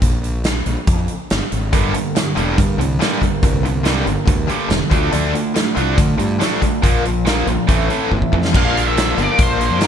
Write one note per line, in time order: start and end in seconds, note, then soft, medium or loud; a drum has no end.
0.02 0.62 A#1 medium
0.02 kick medium
0.02 closed hi-hat medium
0.24 closed hi-hat medium
0.44 snare loud
0.44 closed hi-hat medium
0.66 0.75 A#1 medium
0.66 closed hi-hat medium
0.87 1.07 F2 loud
0.87 kick loud
0.87 closed hi-hat medium
1.08 closed hi-hat medium
1.30 1.40 G1 medium
1.30 snare loud
1.30 closed hi-hat medium
1.52 1.73 G#1 loud
1.52 closed hi-hat medium
1.73 1.92 G1 medium
1.73 1.93 G2 medium
1.73 1.94 G2 medium
1.73 1.93 D3 medium
1.73 1.95 D3 medium
1.73 1.95 G3 medium
1.73 1.93 G3 medium
1.73 1.95 A#3 medium
1.73 1.95 D4 medium
1.73 1.94 A#4 medium
1.73 kick loud
1.73 closed hi-hat medium
1.94 2.14 G2 medium
1.94 2.14 D3 medium
1.94 2.14 G3 soft
1.94 2.15 A#3 soft
1.94 2.16 D4 soft
1.94 2.16 A#4 medium
1.94 closed hi-hat medium
2.16 2.35 G2 medium
2.16 2.35 D3 medium
2.16 2.37 G3 medium
2.16 2.37 A#3 medium
2.16 2.37 D4 medium
2.16 2.36 A#4 medium
2.16 snare loud
2.16 closed hi-hat medium
2.36 2.56 E1 medium
2.36 2.56 G2 medium
2.36 2.57 D3 loud
2.36 2.57 G3 loud
2.36 2.57 A#3 medium
2.36 2.59 D4 medium
2.36 2.58 A#4 medium
2.36 closed hi-hat medium
2.40 2.57 G3 soft
2.58 2.79 G2 medium
2.58 2.77 G2 medium
2.58 2.77 D3 medium
2.58 2.80 D3 medium
2.58 2.79 G3 medium
2.58 2.79 A#3 medium
2.58 2.78 D4 medium
2.58 2.77 A#4 medium
2.58 kick loud
2.58 closed hi-hat medium
2.78 2.98 C2 medium
2.78 2.98 G2 medium
2.78 2.98 D3 medium
2.78 2.99 G3 soft
2.78 3.00 A#3 soft
2.78 3.01 D4 soft
2.78 3.00 A#4 medium
2.78 closed hi-hat medium
3.00 3.20 G2 medium
3.00 3.20 D3 medium
3.00 3.21 G3 medium
3.00 3.21 G3 loud
3.00 3.22 A#3 medium
3.00 3.21 D4 medium
3.00 3.19 A#4 medium
3.00 snare loud
3.00 closed hi-hat medium
3.20 3.41 G2 medium
3.20 3.41 D3 medium
3.20 3.41 G3 soft
3.20 3.42 A#3 medium
3.20 3.42 D4 medium
3.20 3.42 A#4 medium
3.20 kick medium
3.20 closed hi-hat medium
3.42 4.03 C2 loud
3.42 3.63 G2 medium
3.42 3.62 G2 medium
3.42 3.64 D3 medium
3.42 3.62 D3 medium
3.42 3.64 G3 medium
3.42 3.64 A#3 medium
3.42 3.63 D4 medium
3.42 3.62 A#4 medium
3.42 kick loud
3.42 closed hi-hat medium
3.63 3.83 G2 medium
3.63 3.84 D3 medium
3.63 3.83 G3 soft
3.63 3.84 A#3 soft
3.63 3.85 D4 soft
3.63 3.85 A#4 soft
3.63 closed hi-hat medium
3.84 4.05 G2 medium
3.84 4.05 D3 medium
3.84 4.06 G3 medium
3.84 4.05 G3 loud
3.84 4.05 A#3 medium
3.84 4.04 D4 medium
3.84 4.03 A#4 medium
3.84 snare loud
3.84 closed hi-hat medium
4.04 4.16 G1 medium
4.04 4.26 G2 medium
4.04 4.26 D3 medium
4.04 4.25 A#3 soft
4.04 4.26 D4 medium
4.04 4.26 A#4 medium
4.04 closed hi-hat medium
4.08 4.24 G3 soft
4.25 4.47 D2 loud
4.25 4.48 G2 medium
4.25 4.47 G2 medium
4.25 4.48 D3 medium
4.25 4.48 G3 medium
4.25 4.47 A#3 medium
4.25 4.47 D4 medium
4.25 4.46 A#4 medium
4.25 kick loud
4.25 closed hi-hat medium
4.47 4.69 G2 loud
4.47 4.70 D3 loud
4.47 4.68 G3 soft
4.47 4.70 G3 loud
4.47 4.68 A#3 soft
4.47 4.70 D4 medium
4.47 4.69 A#4 medium
4.47 closed hi-hat medium
4.69 4.80 E1 loud
4.69 4.90 G2 medium
4.69 4.90 D3 medium
4.69 4.91 G3 medium
4.69 4.91 A#3 medium
4.69 4.92 D4 medium
4.69 4.90 A#4 medium
4.69 snare loud
4.69 closed hi-hat medium
4.90 5.11 D2 medium
4.90 5.12 D3 medium
4.90 5.12 A3 loud
4.90 5.12 D4 loud
4.90 5.11 D4 soft
4.90 5.12 F4 medium
4.90 5.12 A4 medium
4.90 kick loud
4.90 closed hi-hat medium
5.12 5.33 D2 medium
5.12 5.34 D3 medium
5.12 5.33 D3 medium
5.12 5.34 F3 medium
5.12 5.33 A3 medium
5.12 5.34 D4 medium
5.12 5.34 F4 medium
5.12 5.32 A4 medium
5.12 closed hi-hat medium
5.33 5.54 D3 medium
5.33 5.54 A3 medium
5.33 5.55 D4 soft
5.33 5.56 F4 soft
5.33 5.55 A4 medium
5.33 closed hi-hat medium
5.55 5.75 D3 medium
5.55 5.77 F3 medium
5.55 5.75 A3 medium
5.55 5.77 D4 medium
5.55 5.76 F4 medium
5.55 5.74 A4 medium
5.55 snare loud
5.55 closed hi-hat medium
5.75 5.96 C2 medium
5.75 5.96 D3 medium
5.75 5.97 A3 medium
5.75 5.97 D4 loud
5.75 5.97 D4 soft
5.75 5.98 F4 medium
5.75 5.97 A4 medium
5.75 closed hi-hat medium
5.97 6.19 D3 medium
5.97 6.17 D3 medium
5.97 6.19 F3 medium
5.97 6.18 A3 medium
5.97 6.20 D4 medium
5.97 6.19 F4 loud
5.97 6.18 A4 medium
5.97 kick loud
5.97 closed hi-hat medium
6.18 6.39 G2 medium
6.18 6.38 D3 medium
6.18 6.38 A3 medium
6.18 6.41 D4 soft
6.18 6.41 F4 medium
6.18 6.40 A4 medium
6.18 closed hi-hat medium
6.40 6.60 D3 medium
6.40 6.62 F3 medium
6.40 6.60 A3 loud
6.40 6.61 D4 medium
6.40 6.63 D4 medium
6.40 6.62 F4 medium
6.40 snare medium
6.40 closed hi-hat medium
6.44 6.60 A4 medium
6.61 6.81 D3 medium
6.61 6.81 A3 medium
6.61 6.85 D4 soft
6.61 6.84 F4 soft
6.61 6.83 A4 medium
6.61 kick medium
6.61 closed hi-hat medium
6.82 7.43 A#1 medium
6.82 7.03 A#2 medium
6.82 7.05 A#2 medium
6.82 7.05 D3 medium
6.82 7.03 F3 medium
6.82 7.05 F3 medium
6.82 7.04 A#3 medium
6.82 7.05 A#3 medium
6.82 7.05 D4 medium
6.82 7.04 A#4 medium
6.82 kick loud
6.82 closed hi-hat medium
7.04 7.24 A#2 medium
7.04 7.24 F3 medium
7.04 7.25 F3 soft
7.04 7.27 A#3 soft
7.04 7.27 D4 medium
7.04 closed hi-hat medium
7.25 7.45 A#2 loud
7.25 7.46 F3 medium
7.25 7.47 F3 medium
7.25 7.46 A#3 medium
7.25 7.48 A#3 medium
7.25 7.48 D4 medium
7.25 snare loud
7.25 closed hi-hat medium
7.30 7.46 A#4 medium
7.46 7.57 A#1 medium
7.46 7.67 A#2 medium
7.46 7.67 F3 medium
7.46 7.69 F3 soft
7.46 7.69 A#3 medium
7.46 7.69 D4 medium
7.46 7.68 A#4 medium
7.46 closed hi-hat medium
7.67 7.88 A1 medium
7.67 7.88 A2 medium
7.67 7.90 A2 medium
7.67 7.88 E3 medium
7.67 7.90 E3 medium
7.67 7.89 A3 medium
7.67 7.90 A3 medium
7.67 7.91 C4 medium
7.67 7.90 E4 medium
7.67 7.89 A4 medium
7.67 kick loud
7.67 closed hi-hat medium
7.90 8.10 A2 loud
7.90 8.10 E3 medium
7.90 8.10 A3 medium
7.90 8.10 A3 soft
7.90 8.11 C4 soft
7.90 8.12 E4 medium
7.90 8.11 A4 medium
7.90 closed hi-hat medium
8.11 8.21 G1 medium
8.11 8.31 A2 medium
8.11 8.31 E3 medium
8.11 8.32 A3 medium
8.11 8.33 C4 medium
8.11 8.33 E4 medium
8.11 8.32 A4 medium
8.11 kick medium
8.22 kick medium
8.33 8.52 F2 medium
8.33 8.52 A2 medium
8.33 8.52 E3 medium
8.33 8.55 C4 medium
8.33 8.55 E4 medium
8.33 8.54 A4 medium
8.33 kick medium
8.37 8.56 A3 soft
8.45 snare medium
8.54 9.14 A#1 medium
8.54 8.96 A#2 medium
8.54 8.95 D3 medium
8.54 8.78 F3 medium
8.54 8.77 A#3 medium
8.54 8.76 D4 medium
8.54 8.87 F5 medium
8.54 kick loud
8.54 crash medium
8.76 8.96 F3 medium
8.76 8.97 A#3 medium
8.76 8.98 D4 medium
8.76 closed hi-hat medium
8.87 9.19 E5 medium
8.96 9.80 D3 medium
8.96 9.63 F3 medium
8.96 9.61 A#3 medium
8.96 9.60 D4 medium
8.96 snare loud
8.96 closed hi-hat medium
9.17 9.27 G1 loud
9.17 9.79 A#2 medium
9.17 9.80 F3 medium
9.17 9.80 A#3 medium
9.17 closed hi-hat medium
9.22 9.42 D5 medium
9.38 9.68 A#1 medium
9.38 9.83 C5 medium
9.38 kick loud
9.38 closed hi-hat medium
9.60 9.81 F3 medium
9.60 9.82 A#3 medium
9.60 9.83 D4 medium
9.60 closed hi-hat medium
9.71 9.80 F2 medium
9.80 9.87 G2 medium
9.80 9.87 A#2 medium
9.80 9.87 D3 medium
9.80 9.87 F3 medium
9.80 9.87 A#3 loud
9.80 9.87 D4 loud
9.80 9.87 A#4 medium
9.80 snare loud
9.80 closed hi-hat medium